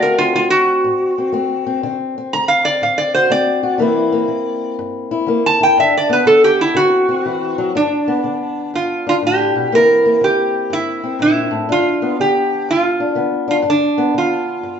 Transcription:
Already playing: D3 A3 C4 F#4
0.02 A#4
0.18 C4 F4
0.35 A3 F4
0.50 F#4
0.84 A2
1.18 C4
1.32 A3 C4
1.67 C4
1.83 D3 C4
2.18 C4
2.33 A3 A#5
2.48 F5
2.65 D5
2.82 A2 F5
2.98 D5
3.14 F#4 C5
3.30 A3 C4 D5
3.63 F#4
3.78 C3 E3 A#3 C4 E4
4.12 A#3
4.28 E3
4.79 G2
5.11 E4
5.27 E3 A#3
5.46 A5
5.61 E4 G5
5.77 G2 D4 E5
5.97 D5
6.09 B3 B4
6.26 D3 A4
6.44 G4
6.61 E4
6.75 D3 C4 F#4
7.09 C4
7.26 E3
7.58 F#3
7.75 G2 D4
8.08 B3
8.24 D3
8.74 G2 F4
9.07 D4 F4
9.22 A2
9.27 G4
9.56 B2
9.72 C3 E3 A#3 C4 E4 A#4
10.06 A#3
10.21 E3 G4
10.70 G2 E4
11.04 C4
11.19 A#2 E4
11.51 A2
11.69 G2 D4 F4
12.02 B3
12.20 D3 G4
12.69 G2 F4
13.00 D4
13.15 D3 B3
13.48 D4 F4
13.62 G2 D4
13.70 D4
13.98 B3
14.14 D3 F4
14.63 G2

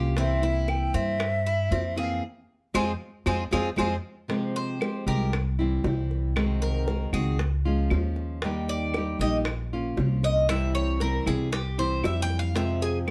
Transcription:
Already playing: C2 A#3 C#4 F4 G4
0.16 C3 E3 A#3 C4 E4 E5, high bongo
0.42 E3 A#3 C4 E4, high bongo
0.68 G5, high bongo, claves
0.94 G2 C4 E5, high bongo
1.19 muted nylon-string guitar stroke, high bongo, claves
1.46 E4
1.69 F2 E3 A#3 C4 E4, high bongo, low bongo
1.96 E3 A#3 C4 E4 G#4 F5, high bongo
2.74 F2 F3 G#3 C4 F4 G#4 G#5, low bongo, claves
3.26 F2 F3 G#3 C4 F4 G#4 G#5, low bongo, claves
3.51 F2 F3 G#3 C4 F4 G#4 G#5, low bongo, claves
3.76 F2 F3 G#3 C4 F4 G#4 G#5, low bongo, claves
4.28 C3 F3 G#3 C4 G4, high bongo
4.56 C5, high bongo
4.80 F3 G#3 C4 G4, high bongo, claves
5.07 C2 F3 G#3 C4 G4 A#4, high bongo
5.33 muted nylon-string guitar stroke, high bongo, claves
5.59 E3 G3 C4 E4
5.84 C2 E3 G3 C4 E4, high bongo, low bongo
6.11 high bongo
6.36 C3 D#3 G#3 C4 F#4, high bongo, claves
6.62 A#4, high bongo
6.87 D#3 G#3 C4 F#4, high bongo
7.13 C#2 D#3 G#3 C4 F#4 G#4, high bongo, claves
7.39 muted nylon-string guitar stroke, high bongo
7.65 F3 G#3 C#4 F4
7.90 D#2 F3 G#3 C#4 F4, high bongo, low bongo, claves
8.16 high bongo
8.42 D#3 G3 A#3 D#4 G4, high bongo
8.68 D5, high bongo
8.94 G3 A#3 D#4, high bongo, claves
8.98 G4
9.19 A#1 A#3 D#4 G4 D#5, high bongo
9.24 G3
9.45 muted nylon-string guitar stroke, high bongo, claves
9.73 A#3 C#4 F4
9.97 C2 F3 A#3 C#4 F4, high bongo, low bongo
10.23 D#5, high bongo
10.48 C3 E3 G3 C4 E4 E5, high bongo, claves
10.75 C#5, high bongo
11.00 E3 G3 C4 E4 A#4, high bongo
11.26 C2 E3 G3 C4 E4 G#4, high bongo, claves
11.52 G4, muted nylon-string guitar stroke, high bongo
11.78 E3 G3 C4 E4 C5
12.03 F2 E3 G3 C4 E4 E5, high bongo, low bongo, claves
12.22 G5
12.30 high bongo
12.39 F5
12.54 C3 F3 G#3 C4 F4 E5, high bongo
12.82 G#4, high bongo
13.07 F3 G#3, claves

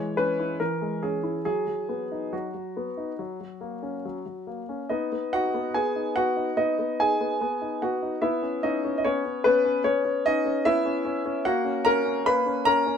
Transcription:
Already playing: E3 G#3 C#5
0.17 C#4 B4
0.39 E4
0.60 E3 A#4
0.81 G#3
1.03 C#4 G#4
1.23 E4
1.45 F#3 G#4
1.68 F#3
1.89 B3
2.12 D#4
2.33 F#3 F#4
2.54 F#3
2.77 B3
2.97 D#4
3.19 F#3
3.41 F#3
3.61 A#3
3.83 C#4
4.05 F#3
4.26 F#3
4.47 A#3
4.69 C#4
4.89 B3 D#4 D#5
5.12 B3
5.33 D#4 F#4 F#5
5.54 B3
5.74 B3 G#4 G#5
5.96 D#4
6.16 B3 F#4 F#5
6.36 D#4
6.57 B3 D#4 D#5
6.79 B3
7.00 D#4 G#4 G#5
7.21 B3
7.41 B3
7.62 D#4
7.82 B3 F#4 F#5
8.02 D#4
8.22 B3 E4 E5
8.42 C#4
8.63 C#4 D#4 D#5
8.84 C#4
8.98 D#5
9.05 B3 C#4 C#5
9.44 B3 C#4 B4
9.65 C#4
9.84 B3 C#4 C#5
10.05 C#4
10.26 C#4 D#4 D#5
10.46 C#4
10.65 B3 E4 E5
10.85 C#4
11.05 C#4
11.25 C#4
11.45 A#3 F#4 F#5
11.65 C#4
11.85 C#4 A#4 A#5
12.05 C#4
12.26 A#3 B4 B5
12.46 C#4
12.65 C#4 A#4 A#5

